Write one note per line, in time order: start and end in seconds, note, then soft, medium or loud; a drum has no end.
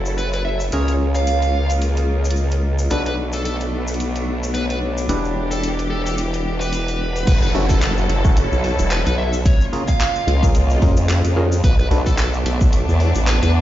0.00 0.70 F#1 medium
0.00 0.71 F#3 medium
0.00 0.70 C#4 medium
0.00 0.70 E4 medium
0.00 0.70 F#4 medium
0.00 0.73 F#4 medium
0.00 0.70 A4 medium
0.00 0.71 A4 medium
0.00 1.61 C#5 medium
0.00 0.73 F#5 medium
0.06 shaker medium
0.18 0.28 B4 medium
0.18 shaker medium
0.33 0.41 B4 medium
0.33 closed hi-hat soft
0.33 shaker soft
0.45 0.63 E5 medium
0.60 shaker medium
0.72 2.89 C#2 medium
0.72 2.89 C#3 medium
0.72 2.89 A#3 medium
0.72 2.88 C#4 medium
0.72 2.89 F4 medium
0.72 2.88 F4 medium
0.72 2.88 G#4 medium
0.72 2.88 A#4 medium
0.72 0.91 C#5 medium
0.72 closed hi-hat medium
0.72 shaker medium
0.88 closed hi-hat soft
0.88 shaker soft
1.15 1.70 F5 medium
1.15 closed hi-hat soft
1.15 shaker medium
1.19 2.91 G#4 medium
1.27 closed hi-hat medium
1.27 shaker medium
1.42 closed hi-hat soft
1.42 shaker soft
1.70 2.91 D#5 medium
1.70 closed hi-hat soft
1.70 shaker medium
1.82 closed hi-hat medium
1.82 shaker medium
1.97 closed hi-hat soft
1.97 shaker soft
2.25 shaker medium
2.30 closed hi-hat medium
2.36 shaker medium
2.51 closed hi-hat soft
2.51 shaker soft
2.79 shaker medium
2.90 5.07 B1 medium
2.90 5.07 A3 medium
2.90 5.97 B3 medium
2.90 5.07 B3 medium
2.90 7.23 D4 medium
2.90 5.06 D4 medium
2.90 5.06 F#4 medium
2.90 5.06 A4 medium
2.90 5.06 B4 medium
2.90 3.01 B4 medium
2.90 closed hi-hat medium
2.90 shaker medium
3.06 3.14 B4 medium
3.06 closed hi-hat medium
3.06 shaker soft
3.33 3.41 A4 medium
3.33 closed hi-hat soft
3.33 shaker medium
3.45 3.55 A4 medium
3.45 closed hi-hat medium
3.45 shaker soft
3.61 closed hi-hat soft
3.61 shaker soft
3.77 5.97 F#5 medium
3.88 5.97 C#5 medium
3.88 shaker medium
3.94 closed hi-hat soft
4.00 closed hi-hat medium
4.00 shaker medium
4.16 closed hi-hat soft
4.16 shaker soft
4.43 shaker medium
4.54 4.64 B4 medium
4.54 closed hi-hat medium
4.54 shaker medium
4.70 4.77 B4 medium
4.70 closed hi-hat soft
4.70 shaker soft
4.98 shaker medium
5.09 7.25 E1 medium
5.09 7.25 E3 medium
5.09 7.24 D4 medium
5.09 8.15 E4 medium
5.09 7.25 E4 medium
5.09 7.25 G4 medium
5.09 7.24 G4 medium
5.09 7.24 B4 medium
5.09 closed hi-hat medium
5.09 shaker medium
5.21 8.11 B4 medium
5.25 shaker soft
5.51 5.67 A4 medium
5.51 closed hi-hat soft
5.51 shaker medium
5.63 closed hi-hat medium
5.63 shaker medium
5.79 closed hi-hat medium
5.79 shaker soft
5.90 6.01 A4 medium
6.06 6.14 A4 medium
6.06 closed hi-hat soft
6.06 shaker medium
6.10 9.46 F#5 medium
6.18 closed hi-hat medium
6.18 shaker medium
6.34 closed hi-hat soft
6.34 shaker soft
6.60 7.26 B4 medium
6.60 closed hi-hat soft
6.60 shaker medium
6.73 closed hi-hat medium
6.73 shaker medium
6.88 closed hi-hat medium
6.88 shaker soft
7.16 closed hi-hat soft
7.16 shaker medium
7.27 7.53 F#1 loud
7.27 9.43 F#3 medium
7.27 9.43 E4 medium
7.27 9.45 F#4 medium
7.27 9.43 A4 loud
7.27 7.37 B4 loud
7.27 kick loud
7.27 closed hi-hat medium
7.27 crash loud
7.27 downlifter medium
7.27 shaker medium
7.41 7.50 B4 medium
7.41 10.34 C#5 medium
7.41 shaker soft
7.54 8.07 F#1 loud
7.54 7.65 C#4 medium
7.54 7.65 E4 medium
7.54 7.65 F#4 medium
7.54 7.65 A4 loud
7.54 cross-stick soft
7.54 open hi-hat medium
7.69 7.77 A4 medium
7.69 kick medium
7.69 closed hi-hat soft
7.69 shaker medium
7.81 7.91 A4 medium
7.81 clap loud
7.81 closed hi-hat medium
7.81 shaker medium
7.98 shaker soft
8.09 8.49 F#1 loud
8.09 closed hi-hat medium
8.25 8.38 C#4 medium
8.25 8.38 E4 medium
8.25 8.38 F#4 medium
8.25 8.38 A4 medium
8.25 kick loud
8.25 shaker medium
8.37 closed hi-hat medium
8.37 shaker medium
8.52 8.77 B1 loud
8.52 shaker soft
8.64 open hi-hat medium
8.79 9.04 E1 loud
8.79 closed hi-hat soft
8.79 shaker medium
8.91 9.01 B4 medium
8.91 clap loud
8.91 closed hi-hat medium
8.91 shaker medium
9.06 9.43 B1 loud
9.06 9.14 B4 medium
9.06 closed hi-hat medium
9.06 shaker soft
9.18 9.36 E5 medium
9.33 shaker medium
9.45 11.62 C#3 medium
9.45 11.62 A#3 medium
9.45 11.62 F4 medium
9.45 9.63 C#5 loud
9.45 kick loud
9.45 closed hi-hat medium
9.45 shaker medium
9.61 shaker soft
9.73 9.83 C#4 medium
9.73 9.83 F4 medium
9.73 9.83 G#4 medium
9.73 9.83 A#4 medium
9.73 open hi-hat medium
9.77 11.64 D#5 medium
9.88 10.43 F5 loud
9.88 kick medium
9.88 closed hi-hat soft
9.88 shaker medium
9.97 11.64 G#4 medium
9.97 clap loud
9.97 closed hi-hat medium
9.97 shaker medium
10.16 shaker soft
10.27 10.64 C#2 medium
10.27 closed hi-hat medium
10.43 10.80 C#4 medium
10.43 10.80 F4 medium
10.43 10.80 G#4 medium
10.43 10.80 A#4 medium
10.43 kick loud
10.43 shaker medium
10.55 closed hi-hat medium
10.55 shaker medium
10.64 10.80 C2 medium
10.70 shaker soft
10.82 11.22 F2 medium
10.82 10.98 C#4 medium
10.82 10.98 F4 medium
10.82 10.98 G#4 medium
10.82 10.98 A#4 medium
10.82 kick loud
10.82 open hi-hat medium
10.96 closed hi-hat soft
10.96 shaker medium
11.09 clap loud
11.09 closed hi-hat medium
11.09 shaker medium
11.24 11.62 F2 loud
11.24 closed hi-hat medium
11.24 shaker soft
11.36 11.47 C#4 loud
11.36 11.47 F4 medium
11.36 11.47 G#4 medium
11.36 11.47 A#4 loud
11.52 shaker medium
11.64 11.89 B1 loud
11.64 13.61 A3 medium
11.64 13.61 B3 medium
11.64 13.61 D4 loud
11.64 11.74 B4 loud
11.64 kick loud
11.64 closed hi-hat medium
11.64 shaker medium
11.79 11.87 B4 medium
11.79 shaker soft
11.90 12.43 B1 loud
11.90 12.01 D4 loud
11.90 12.01 F#4 medium
11.90 12.01 A4 medium
11.90 12.01 B4 loud
11.90 cross-stick soft
11.90 open hi-hat medium
12.02 13.61 F#5 medium
12.06 12.14 A4 medium
12.06 kick medium
12.06 closed hi-hat soft
12.06 shaker medium
12.16 12.28 A4 medium
12.16 13.61 C#5 medium
12.16 clap loud
12.16 closed hi-hat medium
12.16 shaker medium
12.34 shaker soft
12.45 12.86 B1 loud
12.45 closed hi-hat medium
12.61 kick loud
12.61 shaker medium
12.73 closed hi-hat medium
12.73 shaker medium
12.88 13.13 E2 medium
12.88 shaker soft
13.00 open hi-hat medium
13.15 13.40 A1 loud
13.15 closed hi-hat soft
13.15 shaker medium
13.27 13.37 B4 medium
13.27 clap loud
13.27 closed hi-hat medium
13.27 shaker medium
13.42 13.61 E2 loud
13.42 13.50 B4 medium
13.42 closed hi-hat medium
13.42 shaker soft